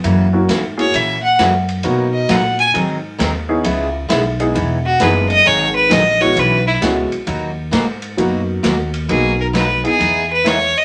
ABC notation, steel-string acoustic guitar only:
X:1
M:4/4
L:1/8
Q:"Swing" 1/4=132
K:B
V:1 name="Steel-string acoustic guitar"
[C,E,A,CF] z [C,E,A,CF] z [C,E,A,CF] z [C,E,A,CF] z | [B,,F,A,DF] z [B,,F,A,DF] z [D,F,^B,DG] z [D,F,B,DG] z | [C,G,B,EG] z [C,G,B,EG] z [E,B,DG] z [E,B,DG] z | [D,F,B,DG] z [D,F,B,DG] z [B,,E,B,CF] z [B,,E,B,CF] z |
[B,,F,A,DF] z [B,,F,A,DF] z [B,,F,A,DF] z [B,,F,A,DF] z | [B,,F,A,DF] z [B,,F,A,DF] z [E,B,DG] z [E,B,DG] z |]